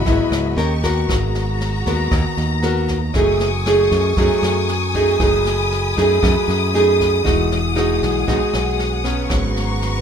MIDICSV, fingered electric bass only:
0, 0, Header, 1, 2, 480
1, 0, Start_track
1, 0, Tempo, 513259
1, 1020, Time_signature, 4, 2, 24, 8
1, 9364, End_track
2, 0, Start_track
2, 0, Title_t, "Fingered electric bass"
2, 0, Program_c, 0, 33
2, 61, Note_on_c, 0, 32, 99
2, 172, Note_off_c, 0, 32, 0
2, 287, Note_on_c, 0, 37, 69
2, 516, Note_off_c, 0, 37, 0
2, 528, Note_on_c, 0, 39, 99
2, 980, Note_off_c, 0, 39, 0
2, 1020, Note_on_c, 0, 32, 82
2, 1703, Note_off_c, 0, 32, 0
2, 1739, Note_on_c, 0, 39, 85
2, 1963, Note_off_c, 0, 39, 0
2, 1977, Note_on_c, 0, 39, 95
2, 2090, Note_off_c, 0, 39, 0
2, 2220, Note_on_c, 0, 39, 81
2, 2903, Note_off_c, 0, 39, 0
2, 2941, Note_on_c, 0, 30, 90
2, 3623, Note_off_c, 0, 30, 0
2, 3659, Note_on_c, 0, 42, 93
2, 3883, Note_off_c, 0, 42, 0
2, 3899, Note_on_c, 0, 42, 97
2, 4011, Note_off_c, 0, 42, 0
2, 4134, Note_on_c, 0, 42, 73
2, 4820, Note_off_c, 0, 42, 0
2, 4862, Note_on_c, 0, 30, 88
2, 5543, Note_off_c, 0, 30, 0
2, 5587, Note_on_c, 0, 42, 92
2, 5807, Note_off_c, 0, 42, 0
2, 5823, Note_on_c, 0, 42, 98
2, 5933, Note_off_c, 0, 42, 0
2, 6058, Note_on_c, 0, 42, 81
2, 6741, Note_off_c, 0, 42, 0
2, 6793, Note_on_c, 0, 28, 90
2, 7468, Note_off_c, 0, 28, 0
2, 7505, Note_on_c, 0, 35, 88
2, 7725, Note_off_c, 0, 35, 0
2, 7745, Note_on_c, 0, 35, 97
2, 7854, Note_off_c, 0, 35, 0
2, 7982, Note_on_c, 0, 35, 77
2, 8663, Note_off_c, 0, 35, 0
2, 8701, Note_on_c, 0, 32, 93
2, 9364, Note_off_c, 0, 32, 0
2, 9364, End_track
0, 0, End_of_file